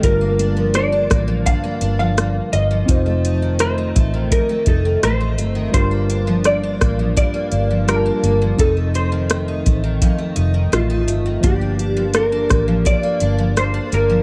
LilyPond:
<<
  \new Staff \with { instrumentName = "Hollow-body jazz guitar" } { \time 4/4 \key g \minor \tempo 4 = 84 bes'4 d''4 f''8. f''8. ees''8~ | ees''4 c''4 bes'8 a'8 c''4 | c''4 d''4 d''4 bes'4 | a'8 c''4. r4 f'4 |
g'4 bes'4 d''4 c''8 bes'8 | }
  \new Staff \with { instrumentName = "Tine electric piano" } { \time 4/4 \key g \minor <d g f' bes'>1 | <c' ees' f' c''>1 | <g d' f' bes'>2. <g d' f' g' a''>4 | <f c' ees' a'>1 |
<f bes d' g'>1 | }
  \new Staff \with { instrumentName = "Steel-string acoustic guitar" } { \time 4/4 \key g \minor <g, d'>16 bes16 d'16 f16 bes16 d'16 bes16 f16 <g, d'>16 bes16 d'16 f16 bes8 bes16 f16 | <f, ees'>16 a16 ees'16 ees16 a16 ees'16 a16 ees16 <f, ees'>16 a16 ees'16 ees16 a16 ees'16 a16 ees16 | <g, d'>16 bes16 d'16 f16 bes16 d'16 bes16 f16 <g, d'>16 bes16 d'16 f16 bes16 d'16 bes16 f16 | <f, ees'>16 a16 ees'16 ees16 a16 ees'16 a16 ees16 <f, ees'>16 a16 ees'16 ees16 a16 ees'16 a16 ees16 |
<g, d'>16 bes16 d'16 f16 bes16 d'16 bes16 f16 <g, d'>16 bes16 d'16 f16 bes16 d'16 bes16 f16 | }
  \new Staff \with { instrumentName = "Fingered electric bass" } { \clef bass \time 4/4 \key g \minor g,,4. a,,8. r16 g,,4 g,,8 | f,,4. a,,8. r16 f,,8 a,,8 g,,8 | g,,4. a,,8. r16 g,,4 g,,8 | f,,4. a,,8. r16 f,,8 a,,8 g,,8 |
g,,4. a,,8. r16 g,,4 g,,8 | }
  \new DrumStaff \with { instrumentName = "Drums" } \drummode { \time 4/4 <hh bd>8 hh8 <hh ss>8 <hh bd ss>8 <hh bd>8 hh8 <hh ss>8 hh8 | <hh bd>8 hh8 <hh ss>8 <hh bd>8 <hh bd>8 <hh bd>8 <hh ss>8 hh8 | <hh bd>8 hh8 <hh ss>8 <hh bd ss>8 <hh bd>8 hh8 <hh ss>8 hh8 | <hh bd>8 hh8 <hh ss>8 <hh bd>8 <hh bd>8 hh8 <hh ss>8 hh8 |
<hh bd>8 hh8 <hh ss>8 <hh bd ss>8 <hh bd>8 hh8 <hh ss>8 hh8 | }
>>